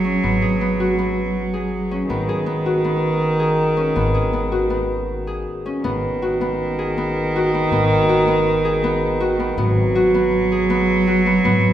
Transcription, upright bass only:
0, 0, Header, 1, 2, 480
1, 0, Start_track
1, 0, Key_signature, 5, "minor"
1, 0, Tempo, 374065
1, 302, Time_signature, 5, 2, 24, 8
1, 15053, End_track
2, 0, Start_track
2, 0, Title_t, "Upright bass"
2, 0, Program_c, 0, 32
2, 0, Note_on_c, 0, 32, 55
2, 249, Note_off_c, 0, 32, 0
2, 307, Note_on_c, 0, 32, 61
2, 2649, Note_off_c, 0, 32, 0
2, 2691, Note_on_c, 0, 32, 60
2, 5031, Note_off_c, 0, 32, 0
2, 5082, Note_on_c, 0, 32, 55
2, 6980, Note_off_c, 0, 32, 0
2, 7500, Note_on_c, 0, 32, 64
2, 9861, Note_off_c, 0, 32, 0
2, 9896, Note_on_c, 0, 32, 65
2, 12244, Note_off_c, 0, 32, 0
2, 12285, Note_on_c, 0, 32, 68
2, 14642, Note_off_c, 0, 32, 0
2, 14695, Note_on_c, 0, 32, 68
2, 15053, Note_off_c, 0, 32, 0
2, 15053, End_track
0, 0, End_of_file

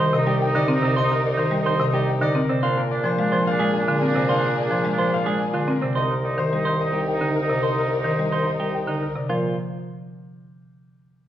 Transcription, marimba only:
0, 0, Header, 1, 2, 480
1, 0, Start_track
1, 0, Tempo, 555556
1, 828, Time_signature, 3, 2, 24, 8
1, 9748, End_track
2, 0, Start_track
2, 0, Title_t, "Marimba"
2, 0, Program_c, 0, 12
2, 0, Note_on_c, 0, 51, 63
2, 111, Note_on_c, 0, 48, 73
2, 146, Note_off_c, 0, 51, 0
2, 230, Note_on_c, 0, 55, 59
2, 265, Note_off_c, 0, 48, 0
2, 385, Note_off_c, 0, 55, 0
2, 475, Note_on_c, 0, 50, 75
2, 590, Note_on_c, 0, 60, 69
2, 626, Note_off_c, 0, 50, 0
2, 710, Note_on_c, 0, 48, 69
2, 745, Note_off_c, 0, 60, 0
2, 865, Note_off_c, 0, 48, 0
2, 1188, Note_on_c, 0, 51, 64
2, 1306, Note_on_c, 0, 55, 70
2, 1344, Note_off_c, 0, 51, 0
2, 1438, Note_on_c, 0, 51, 55
2, 1463, Note_off_c, 0, 55, 0
2, 1553, Note_on_c, 0, 48, 76
2, 1588, Note_off_c, 0, 51, 0
2, 1673, Note_on_c, 0, 55, 60
2, 1706, Note_off_c, 0, 48, 0
2, 1826, Note_off_c, 0, 55, 0
2, 1912, Note_on_c, 0, 50, 82
2, 2029, Note_on_c, 0, 60, 59
2, 2066, Note_off_c, 0, 50, 0
2, 2157, Note_on_c, 0, 48, 61
2, 2184, Note_off_c, 0, 60, 0
2, 2307, Note_off_c, 0, 48, 0
2, 2625, Note_on_c, 0, 53, 65
2, 2749, Note_on_c, 0, 56, 70
2, 2783, Note_off_c, 0, 53, 0
2, 2872, Note_on_c, 0, 53, 65
2, 2904, Note_off_c, 0, 56, 0
2, 3025, Note_off_c, 0, 53, 0
2, 3109, Note_on_c, 0, 56, 68
2, 3265, Note_off_c, 0, 56, 0
2, 3353, Note_on_c, 0, 50, 82
2, 3470, Note_on_c, 0, 60, 58
2, 3506, Note_off_c, 0, 50, 0
2, 3586, Note_on_c, 0, 48, 61
2, 3625, Note_off_c, 0, 60, 0
2, 3743, Note_off_c, 0, 48, 0
2, 4069, Note_on_c, 0, 53, 59
2, 4188, Note_on_c, 0, 56, 56
2, 4224, Note_off_c, 0, 53, 0
2, 4314, Note_on_c, 0, 53, 51
2, 4344, Note_off_c, 0, 56, 0
2, 4466, Note_off_c, 0, 53, 0
2, 4552, Note_on_c, 0, 56, 61
2, 4706, Note_off_c, 0, 56, 0
2, 4787, Note_on_c, 0, 50, 69
2, 4906, Note_on_c, 0, 60, 60
2, 4944, Note_off_c, 0, 50, 0
2, 5033, Note_on_c, 0, 48, 61
2, 5063, Note_off_c, 0, 60, 0
2, 5186, Note_off_c, 0, 48, 0
2, 5511, Note_on_c, 0, 51, 62
2, 5641, Note_on_c, 0, 55, 57
2, 5665, Note_off_c, 0, 51, 0
2, 5762, Note_on_c, 0, 51, 53
2, 5788, Note_off_c, 0, 55, 0
2, 5909, Note_off_c, 0, 51, 0
2, 5990, Note_on_c, 0, 55, 48
2, 6145, Note_off_c, 0, 55, 0
2, 6231, Note_on_c, 0, 50, 60
2, 6385, Note_off_c, 0, 50, 0
2, 6477, Note_on_c, 0, 48, 58
2, 6627, Note_off_c, 0, 48, 0
2, 6949, Note_on_c, 0, 51, 62
2, 7077, Note_on_c, 0, 55, 52
2, 7104, Note_off_c, 0, 51, 0
2, 7194, Note_on_c, 0, 51, 42
2, 7227, Note_off_c, 0, 55, 0
2, 7346, Note_off_c, 0, 51, 0
2, 7431, Note_on_c, 0, 55, 49
2, 7585, Note_off_c, 0, 55, 0
2, 7666, Note_on_c, 0, 50, 57
2, 7823, Note_off_c, 0, 50, 0
2, 7908, Note_on_c, 0, 48, 47
2, 8032, Note_on_c, 0, 53, 64
2, 8064, Note_off_c, 0, 48, 0
2, 8253, Note_off_c, 0, 53, 0
2, 9748, End_track
0, 0, End_of_file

